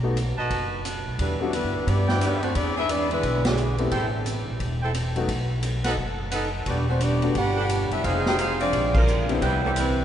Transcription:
Already playing: B1
0.03 A3 B3 D#4 F#4
0.17 hi-hat pedal, ride
0.37 A#1 F#4 B4 D#5 A5
0.50 F#1, kick, ride
0.85 hi-hat pedal, ride
1.06 B1
1.19 E2 D3 G3 B3 D4 E4 B4, kick, ride
1.40 F#3 G3 A3 B3 D4 E4 F#4 A4
1.52 D3 G3 B3 D4 E4 B4, hi-hat pedal, ride
1.64 G2
1.76 D2
1.86 G2 G3 B3 D4 E4 G4 D5, kick, ride
2.08 E4 B4 D5 G5, snare
2.21 hi-hat pedal, ride
2.42 A3 C4 D4 F#4 C5, ride
2.55 E2 G#3 B3 D4 E4 G#4 D5, kick, ride
2.76 G#3 B3 D4 E4 G#4 B4 E5
2.89 G#3 B3 D4 E4 G#4 D5, hi-hat pedal, ride
3.10 D3 G#3 B3 D4 E4 B4, ride
3.23 B1, kick, ride
3.45 B2 D3 E3 G#3 B3 D4 G#4, snare, ride
3.57 hi-hat pedal
3.78 A3 B3 C4 E4 G4, ride
3.91 A1 E4 A4 C5 G5, kick, ride
4.26 hi-hat pedal, ride
4.48 A#1
4.60 E1, kick, ride
4.82 E4 A4 C5 G5
4.94 hi-hat pedal, ride
5.16 F#3 A3 B3 D#4 F#4, ride
5.28 B1, kick, ride
5.63 hi-hat pedal, ride
5.84 D#4 A4 B4 F#5, snare, ride
5.97 F#1, kick
6.31 D#4 A4 B4 F#5, hi-hat pedal, ride
6.66 E1 G3 B3 D4 F#4 G4 D5, kick, ride
6.88 A3 C4 D4 F#4 C5
7.00 G3 B3 D4 F#4 G4 D5, hi-hat pedal, ride
7.22 G3 A3 B3 D4 F#4, ride
7.35 G1 B3 D4 G4 B4 F#5, kick, ride
7.57 D4 G4 A4 F#5
7.69 hi-hat pedal, ride
7.91 F#1 G3 B3 D4 E4 G4 B4 E5, ride
8.04 F1 G#3 C4 D#4 F4 G#4 C5 F5, kick, ride
8.26 D#4 G4 G#4 C5 G5, snare
8.38 G#3 C4 D#4 F4 G#4 C5 F5, hi-hat pedal, ride
8.60 F3 G#3 C4 D4 F4 G#4 D5, ride
8.73 A#1, kick, ride
8.94 D3 F3 G#3 A#3 D4 F4 A#4 C5 F5, kick, crash
9.07 hi-hat pedal
9.29 D3 G3 B3 C4 E4, ride
9.42 C2 E3 G3 B3 C4 E4 B4 C5 G5, kick, ride
9.63 F#3 A3 B3 D4 A4
9.76 E3 G3 C4 E4 B4, hi-hat pedal, ride

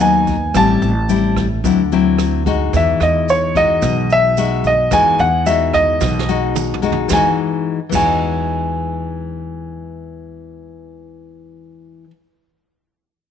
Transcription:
Already playing: D#2 D#3
0.00 F#3 B3 D#4 G#5, closed hi-hat, shaker
0.27 kick, closed hi-hat, shaker
0.54 A1 A2 G3 C4 E4 A5, kick, cross-stick, closed hi-hat, shaker
0.82 A1, closed hi-hat, shaker
1.09 G3 C4 E4, closed hi-hat, shaker
1.36 kick, cross-stick, closed hi-hat, shaker
1.64 D2 D3 F#3 C4 E4, kick, closed hi-hat, shaker
1.92 F#3 C4 E4, closed hi-hat, shaker
2.19 cross-stick, closed hi-hat, shaker
2.46 G#3 D#4 F#4, kick, closed hi-hat, shaker
2.73 E2 E3 E5, kick, closed hi-hat, shaker
3.00 E2 D#5, cross-stick, closed hi-hat, shaker
3.28 C#5, closed hi-hat, shaker
3.55 G#3 D#4 F#4 D#5, kick, closed hi-hat, shaker
3.82 B1 B2, kick, cross-stick, closed hi-hat, shaker
4.10 E5, closed hi-hat, shaker
4.37 G#3 D#4 F#4, closed hi-hat, shaker
4.64 D#5, kick, closed hi-hat, shaker
4.91 E2 E3 G#3 D#4 F#4 G#5, kick, cross-stick, shaker
5.19 E2 F#5, closed hi-hat, shaker
5.46 G#3 D#4 F#4 E5, closed hi-hat, shaker
5.74 D#5, kick, cross-stick, shaker
6.01 B1 B2, kick, snare, shaker
6.19 snare
6.29 G#3 D#4 F#4, shaker
6.56 mid tom, shaker
6.74 mid tom
6.82 G#3 D#4 F#4, shaker
6.92 floor tom
7.08 E2 E3 G#3, kick, snare, shaker
7.12 D#4 F#4 G#5
7.89 E2 E3 G#3, kick, crash, shaker
7.94 D#4 F#4 G#5

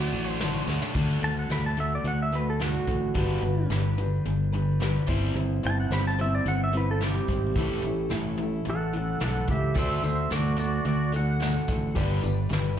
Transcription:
Already playing: D3 F#3 A3 D4 F#4 A4 D5
0.12 A1 D4 F#4 D5, ride, tambourine
0.30 C5
0.39 D3 A3 D4 F#4 D5, snare, ride, tambourine
0.54 tambourine
0.67 D2 F#4 D5, snare, tambourine
0.71 D4
0.81 snare, tambourine
0.94 D2 D3 A3 D4 F#4 A4, kick, crash
1.22 D2 D3 A3 D4 F#4 A4 A5, closed hi-hat
1.39 F#5
1.49 D2 D3 A3 D4 F#4 A4 B5, snare, closed hi-hat
1.66 A5
1.76 D3 A3 D4 F#4 A4 E5, closed hi-hat
1.95 D5
2.04 D2 D3 A3 F#5, closed hi-hat
2.22 E5
2.31 D3 A3 D4 F#4 A4, closed hi-hat
2.35 B4
2.50 A4
2.59 D3 A3 D4 F#4 A4, snare, closed hi-hat
2.87 A1 D3 A3, kick, closed hi-hat
3.14 G1 G2 D3 G3 D4 G4 B4, kick, closed hi-hat
3.42 G1 G2 D3 D4 G4 B4, closed hi-hat
3.70 G1 G2 D3 G3 D4 G4 B4, snare, closed hi-hat
3.98 G2 D3 D4 G4 B4, closed hi-hat
4.25 G1 G2 D3, closed hi-hat
4.52 G2 D3 D4 G4 B4, closed hi-hat
4.81 G2 D3 G3 D4 G4 B4, snare, closed hi-hat
5.07 G1 G3 C4 E4 C5, kick, closed hi-hat
5.35 G1 G3 C4, closed hi-hat
5.63 G1 G3 C4 E4 C5 A5, closed hi-hat
5.80 F#5
5.90 G1 G3 C4 E4 C5 B5, snare, closed hi-hat
6.07 A5
6.19 G3 C4 E4 C5 E5, closed hi-hat
6.35 D5
6.45 G1 G3 C4 F#5, closed hi-hat
6.64 E5
6.73 G3 C4 E4 C5, closed hi-hat
6.77 B4
6.91 A4
7.00 G3 C4 E4, snare, closed hi-hat
7.05 G4 C5
7.28 G#1 G3 C4, kick, closed hi-hat
7.56 A1 A2 E3 A3 C#4 E4 A4, kick, closed hi-hat
7.83 A1 A2 E3 C#4 E4 A4, closed hi-hat
7.87 A3
8.10 A1 A2 E3 A3 C#4, snare, closed hi-hat
8.14 E4 A4
8.37 A2 E3 E4 A4, closed hi-hat
8.42 A3 C#4
8.65 A1 A2 E3, closed hi-hat
8.70 A4 F#5
8.93 A2 E3 C#4 E4 A4, closed hi-hat
8.97 A3 F#5
9.20 B1 A2 E3 A3 C#4 E4, snare, closed hi-hat
9.24 A4 F#5
9.48 C#2 A2 E3 G4 E5, kick, closed hi-hat
9.75 D2 D3 A3 D4 F#4 A4 C5 D5, kick, closed hi-hat, tambourine
9.79 E5
10.03 D2 D3 A3 D4 F#4 A4 C5 E5, closed hi-hat, tambourine
10.30 D2 D3 A3 D4 F#4 A4 D5, snare, closed hi-hat, tambourine
10.57 D3 A3 F#4 A4 D5, closed hi-hat, tambourine
10.61 D4 F#4
10.85 D2 D3 A3 F#4 D5, closed hi-hat, tambourine
11.12 D3 A3 F#4 A4 D5 F#5, closed hi-hat, tambourine
11.17 D4
11.40 D3 A3 D4 F#4 A4, snare, closed hi-hat, tambourine
11.68 A1 D3 A3, kick, closed hi-hat, tambourine
11.95 G1 G2 D3 G3 D4 G4 B4 D5, kick, closed hi-hat, tambourine
12.22 G1 G2 D3 D4 G4 B4, closed hi-hat, tambourine
12.50 G1 G2 D3 G3 D4 G4 B4, snare, closed hi-hat, tambourine
12.77 B4

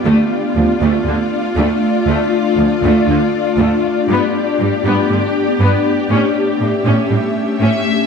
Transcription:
0.06 D2 A3 D4 F4 D5
0.56 D2 F3
0.81 D2 A3
1.07 D2 D3
1.57 D2 A3
2.07 D2 A3
2.58 D2 F3
2.83 D2 A3
3.08 D2 D3
3.59 D2 A3
4.08 G2 B3 G4
4.59 G2 G3
4.85 G2 B3
5.10 G2 D3
5.60 G2 B3
6.10 A2 A3 C#4 E5
6.61 A2 A3
6.85 A2 C#4
7.11 A2 G3
7.61 A2 C#4 E5

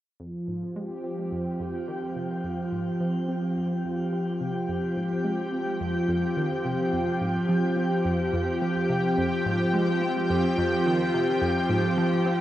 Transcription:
0.20 F2 F3
0.48 G#2
0.68 G4
0.76 G#3 C4
1.04 C4
1.32 F2
1.50 G5
1.60 F2
1.88 D#3
2.16 C3
2.44 F2
2.72 G#2
3.00 F3
3.28 C4
3.56 F2
3.84 F2
4.13 F3
4.41 C3
4.69 F2
4.96 G#2
5.24 G#3
5.52 C4
5.81 F2
6.09 F2
6.37 D#3
6.65 C3
6.93 F2
7.21 G#2
7.49 F3
7.77 C4
8.05 F2
8.33 F2
8.62 F3
8.89 C3
9.18 F2
9.46 G#2
9.74 G#3
10.02 C4
10.30 F2
10.58 F2
10.86 D#3
11.14 C3
11.42 F2
11.70 G#2
11.98 F3
12.26 C4

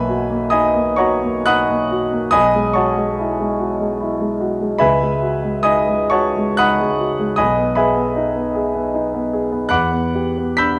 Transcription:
Already playing: B1 A#3 B4 E5 G#5 B5
0.08 F#4
0.30 A#3
0.50 D#4 D#5 G#5 B5 D#6
0.74 A#3
0.96 F#4 C#5 F#5 A#5 C#6
1.24 A#3
1.46 D#4 F#5 B5 D#6 F#6
1.69 A#3
1.91 F#4
2.12 A#3
2.31 B1 D#5 G#5 B5 D#6
2.54 G#3
2.73 F#4 C#5 F#5 A5 C#6
2.97 G#3
3.18 E4
3.39 G#3
3.59 F#4
3.80 G#3
4.01 E4
4.20 G#3
4.40 F#4
4.61 G#3
4.78 C#2 B4 E5 G#5 B5
5.01 G#3
5.22 F#4
5.43 G#3
5.63 D#4 D#5 G#5 B5 D#6
5.89 G#3
6.10 F#4 C#5 F#5 A5 C#6
6.36 G#3
6.57 D#4 F#5 B5 D#6 F#6
6.80 G#3
6.99 F#4
7.19 G#3
7.36 B1 D#5 G#5 B5 D#6
7.57 B3
7.75 G#4 B4 E5 G#5 B5
7.96 B3
8.16 D#4
8.36 B3
8.55 G#4
8.74 B3
8.94 D#4
9.14 B3
9.33 G#4
9.52 B3
9.69 E2 F#5 B5 D6 F#6
9.92 B3
10.15 G4
10.38 B3
10.57 D4 B5 E6 G6 B6

